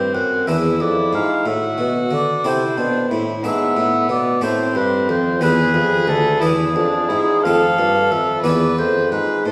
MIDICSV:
0, 0, Header, 1, 5, 480
1, 0, Start_track
1, 0, Tempo, 659341
1, 1066, Time_signature, 6, 3, 24, 8
1, 4424, Tempo, 676437
1, 6866, End_track
2, 0, Start_track
2, 0, Title_t, "Oboe"
2, 0, Program_c, 0, 68
2, 0, Note_on_c, 0, 79, 90
2, 100, Note_on_c, 0, 78, 77
2, 111, Note_off_c, 0, 79, 0
2, 338, Note_on_c, 0, 76, 75
2, 349, Note_off_c, 0, 78, 0
2, 591, Note_on_c, 0, 74, 83
2, 602, Note_off_c, 0, 76, 0
2, 828, Note_off_c, 0, 74, 0
2, 836, Note_on_c, 0, 77, 78
2, 1070, Note_on_c, 0, 76, 78
2, 1080, Note_off_c, 0, 77, 0
2, 1436, Note_off_c, 0, 76, 0
2, 1560, Note_on_c, 0, 74, 88
2, 1800, Note_on_c, 0, 72, 89
2, 1811, Note_off_c, 0, 74, 0
2, 2313, Note_off_c, 0, 72, 0
2, 2516, Note_on_c, 0, 76, 99
2, 2960, Note_off_c, 0, 76, 0
2, 2990, Note_on_c, 0, 74, 96
2, 3226, Note_on_c, 0, 72, 82
2, 3237, Note_off_c, 0, 74, 0
2, 3467, Note_on_c, 0, 71, 88
2, 3478, Note_off_c, 0, 72, 0
2, 3705, Note_off_c, 0, 71, 0
2, 3710, Note_on_c, 0, 72, 91
2, 3949, Note_on_c, 0, 71, 106
2, 3960, Note_off_c, 0, 72, 0
2, 4424, Note_on_c, 0, 69, 91
2, 4434, Note_off_c, 0, 71, 0
2, 4652, Note_off_c, 0, 69, 0
2, 4656, Note_on_c, 0, 68, 98
2, 5368, Note_off_c, 0, 68, 0
2, 5388, Note_on_c, 0, 77, 100
2, 5868, Note_on_c, 0, 76, 94
2, 5879, Note_off_c, 0, 77, 0
2, 6091, Note_off_c, 0, 76, 0
2, 6095, Note_on_c, 0, 74, 79
2, 6333, Note_off_c, 0, 74, 0
2, 6343, Note_on_c, 0, 72, 84
2, 6574, Note_off_c, 0, 72, 0
2, 6578, Note_on_c, 0, 71, 70
2, 6818, Note_off_c, 0, 71, 0
2, 6822, Note_on_c, 0, 69, 81
2, 6866, Note_off_c, 0, 69, 0
2, 6866, End_track
3, 0, Start_track
3, 0, Title_t, "Violin"
3, 0, Program_c, 1, 40
3, 0, Note_on_c, 1, 60, 66
3, 351, Note_on_c, 1, 64, 62
3, 362, Note_off_c, 1, 60, 0
3, 1067, Note_on_c, 1, 66, 69
3, 1078, Note_off_c, 1, 64, 0
3, 1788, Note_on_c, 1, 64, 62
3, 1799, Note_off_c, 1, 66, 0
3, 2018, Note_on_c, 1, 62, 67
3, 2029, Note_off_c, 1, 64, 0
3, 2254, Note_off_c, 1, 62, 0
3, 2258, Note_on_c, 1, 64, 62
3, 2499, Note_on_c, 1, 59, 71
3, 2510, Note_off_c, 1, 64, 0
3, 3218, Note_on_c, 1, 60, 73
3, 3229, Note_off_c, 1, 59, 0
3, 3940, Note_off_c, 1, 60, 0
3, 3946, Note_on_c, 1, 68, 84
3, 4654, Note_on_c, 1, 64, 70
3, 4664, Note_off_c, 1, 68, 0
3, 4897, Note_off_c, 1, 64, 0
3, 4907, Note_on_c, 1, 62, 73
3, 5140, Note_on_c, 1, 64, 64
3, 5151, Note_off_c, 1, 62, 0
3, 5374, Note_off_c, 1, 64, 0
3, 5379, Note_on_c, 1, 69, 79
3, 6083, Note_off_c, 1, 69, 0
3, 6092, Note_on_c, 1, 71, 71
3, 6805, Note_off_c, 1, 71, 0
3, 6827, Note_on_c, 1, 72, 69
3, 6866, Note_off_c, 1, 72, 0
3, 6866, End_track
4, 0, Start_track
4, 0, Title_t, "Harpsichord"
4, 0, Program_c, 2, 6
4, 0, Note_on_c, 2, 43, 46
4, 0, Note_on_c, 2, 60, 34
4, 0, Note_on_c, 2, 64, 37
4, 0, Note_on_c, 2, 69, 36
4, 79, Note_off_c, 2, 43, 0
4, 107, Note_on_c, 2, 42, 49
4, 318, Note_off_c, 2, 60, 0
4, 321, Note_off_c, 2, 64, 0
4, 322, Note_off_c, 2, 42, 0
4, 322, Note_off_c, 2, 69, 0
4, 346, Note_on_c, 2, 40, 49
4, 347, Note_on_c, 2, 62, 40
4, 351, Note_on_c, 2, 64, 39
4, 354, Note_on_c, 2, 68, 38
4, 561, Note_off_c, 2, 40, 0
4, 585, Note_on_c, 2, 41, 52
4, 801, Note_off_c, 2, 41, 0
4, 821, Note_on_c, 2, 44, 53
4, 1038, Note_off_c, 2, 62, 0
4, 1039, Note_off_c, 2, 44, 0
4, 1040, Note_off_c, 2, 64, 0
4, 1042, Note_off_c, 2, 68, 0
4, 1060, Note_on_c, 2, 45, 53
4, 1279, Note_off_c, 2, 45, 0
4, 1295, Note_on_c, 2, 47, 52
4, 1516, Note_off_c, 2, 47, 0
4, 1534, Note_on_c, 2, 50, 51
4, 1756, Note_off_c, 2, 50, 0
4, 1780, Note_on_c, 2, 48, 59
4, 1780, Note_on_c, 2, 60, 44
4, 1781, Note_on_c, 2, 64, 43
4, 1785, Note_on_c, 2, 69, 46
4, 2000, Note_off_c, 2, 48, 0
4, 2021, Note_on_c, 2, 47, 53
4, 2241, Note_off_c, 2, 47, 0
4, 2267, Note_on_c, 2, 45, 59
4, 2301, Note_off_c, 2, 60, 0
4, 2302, Note_off_c, 2, 64, 0
4, 2304, Note_off_c, 2, 69, 0
4, 2482, Note_off_c, 2, 45, 0
4, 2504, Note_on_c, 2, 44, 55
4, 2506, Note_on_c, 2, 62, 44
4, 2509, Note_on_c, 2, 64, 44
4, 2514, Note_on_c, 2, 71, 42
4, 2720, Note_off_c, 2, 44, 0
4, 2742, Note_on_c, 2, 45, 56
4, 2959, Note_off_c, 2, 45, 0
4, 2980, Note_on_c, 2, 47, 61
4, 3195, Note_off_c, 2, 62, 0
4, 3197, Note_off_c, 2, 64, 0
4, 3198, Note_off_c, 2, 47, 0
4, 3199, Note_off_c, 2, 71, 0
4, 3213, Note_on_c, 2, 45, 57
4, 3214, Note_on_c, 2, 57, 44
4, 3216, Note_on_c, 2, 64, 47
4, 3220, Note_on_c, 2, 69, 44
4, 3434, Note_off_c, 2, 45, 0
4, 3459, Note_on_c, 2, 43, 55
4, 3677, Note_off_c, 2, 43, 0
4, 3707, Note_on_c, 2, 41, 59
4, 3909, Note_off_c, 2, 57, 0
4, 3910, Note_off_c, 2, 64, 0
4, 3912, Note_off_c, 2, 69, 0
4, 3921, Note_off_c, 2, 41, 0
4, 3939, Note_on_c, 2, 40, 54
4, 3940, Note_on_c, 2, 59, 46
4, 3944, Note_on_c, 2, 64, 44
4, 3948, Note_on_c, 2, 68, 45
4, 4157, Note_off_c, 2, 40, 0
4, 4157, Note_off_c, 2, 59, 0
4, 4181, Note_on_c, 2, 41, 62
4, 4398, Note_off_c, 2, 41, 0
4, 4423, Note_on_c, 2, 38, 60
4, 4632, Note_off_c, 2, 64, 0
4, 4634, Note_off_c, 2, 68, 0
4, 4637, Note_off_c, 2, 38, 0
4, 4666, Note_on_c, 2, 40, 57
4, 4667, Note_on_c, 2, 59, 47
4, 4668, Note_on_c, 2, 62, 46
4, 4671, Note_on_c, 2, 64, 47
4, 4879, Note_off_c, 2, 40, 0
4, 4880, Note_off_c, 2, 59, 0
4, 4908, Note_on_c, 2, 41, 58
4, 5123, Note_off_c, 2, 41, 0
4, 5152, Note_on_c, 2, 44, 55
4, 5361, Note_off_c, 2, 62, 0
4, 5362, Note_off_c, 2, 64, 0
4, 5366, Note_off_c, 2, 44, 0
4, 5401, Note_on_c, 2, 57, 42
4, 5402, Note_on_c, 2, 41, 55
4, 5407, Note_on_c, 2, 60, 39
4, 5411, Note_on_c, 2, 69, 41
4, 5609, Note_off_c, 2, 57, 0
4, 5610, Note_off_c, 2, 41, 0
4, 5612, Note_off_c, 2, 60, 0
4, 5636, Note_on_c, 2, 43, 52
4, 5845, Note_off_c, 2, 43, 0
4, 5874, Note_on_c, 2, 41, 56
4, 6083, Note_off_c, 2, 41, 0
4, 6085, Note_off_c, 2, 69, 0
4, 6100, Note_on_c, 2, 40, 53
4, 6101, Note_on_c, 2, 59, 39
4, 6104, Note_on_c, 2, 64, 38
4, 6109, Note_on_c, 2, 68, 41
4, 6316, Note_off_c, 2, 40, 0
4, 6317, Note_off_c, 2, 59, 0
4, 6347, Note_on_c, 2, 41, 47
4, 6561, Note_off_c, 2, 41, 0
4, 6585, Note_on_c, 2, 44, 50
4, 6798, Note_off_c, 2, 64, 0
4, 6800, Note_off_c, 2, 68, 0
4, 6802, Note_off_c, 2, 44, 0
4, 6822, Note_on_c, 2, 45, 45
4, 6866, Note_off_c, 2, 45, 0
4, 6866, End_track
5, 0, Start_track
5, 0, Title_t, "Bassoon"
5, 0, Program_c, 3, 70
5, 0, Note_on_c, 3, 43, 60
5, 97, Note_off_c, 3, 43, 0
5, 101, Note_on_c, 3, 42, 57
5, 338, Note_off_c, 3, 42, 0
5, 345, Note_on_c, 3, 40, 57
5, 580, Note_off_c, 3, 40, 0
5, 592, Note_on_c, 3, 41, 58
5, 824, Note_off_c, 3, 41, 0
5, 831, Note_on_c, 3, 44, 65
5, 1064, Note_off_c, 3, 44, 0
5, 1073, Note_on_c, 3, 45, 70
5, 1305, Note_off_c, 3, 45, 0
5, 1312, Note_on_c, 3, 47, 66
5, 1548, Note_on_c, 3, 50, 60
5, 1559, Note_off_c, 3, 47, 0
5, 1785, Note_off_c, 3, 50, 0
5, 1789, Note_on_c, 3, 48, 63
5, 2029, Note_on_c, 3, 47, 61
5, 2040, Note_off_c, 3, 48, 0
5, 2272, Note_on_c, 3, 45, 67
5, 2283, Note_off_c, 3, 47, 0
5, 2510, Note_on_c, 3, 44, 76
5, 2521, Note_off_c, 3, 45, 0
5, 2743, Note_off_c, 3, 44, 0
5, 2747, Note_on_c, 3, 45, 69
5, 2985, Note_on_c, 3, 47, 76
5, 2996, Note_off_c, 3, 45, 0
5, 3218, Note_off_c, 3, 47, 0
5, 3222, Note_on_c, 3, 45, 75
5, 3458, Note_off_c, 3, 45, 0
5, 3464, Note_on_c, 3, 43, 67
5, 3705, Note_on_c, 3, 41, 76
5, 3716, Note_off_c, 3, 43, 0
5, 3944, Note_on_c, 3, 40, 85
5, 3955, Note_off_c, 3, 41, 0
5, 4177, Note_off_c, 3, 40, 0
5, 4181, Note_on_c, 3, 41, 68
5, 4424, Note_on_c, 3, 38, 75
5, 4435, Note_off_c, 3, 41, 0
5, 4665, Note_on_c, 3, 40, 70
5, 4676, Note_off_c, 3, 38, 0
5, 4901, Note_off_c, 3, 40, 0
5, 4906, Note_on_c, 3, 41, 66
5, 5145, Note_on_c, 3, 44, 68
5, 5155, Note_off_c, 3, 41, 0
5, 5389, Note_on_c, 3, 41, 77
5, 5400, Note_off_c, 3, 44, 0
5, 5626, Note_off_c, 3, 41, 0
5, 5632, Note_on_c, 3, 43, 62
5, 5868, Note_on_c, 3, 41, 67
5, 5879, Note_off_c, 3, 43, 0
5, 6105, Note_on_c, 3, 40, 61
5, 6115, Note_off_c, 3, 41, 0
5, 6342, Note_off_c, 3, 40, 0
5, 6349, Note_on_c, 3, 41, 64
5, 6581, Note_off_c, 3, 41, 0
5, 6585, Note_on_c, 3, 44, 60
5, 6828, Note_on_c, 3, 45, 68
5, 6839, Note_off_c, 3, 44, 0
5, 6866, Note_off_c, 3, 45, 0
5, 6866, End_track
0, 0, End_of_file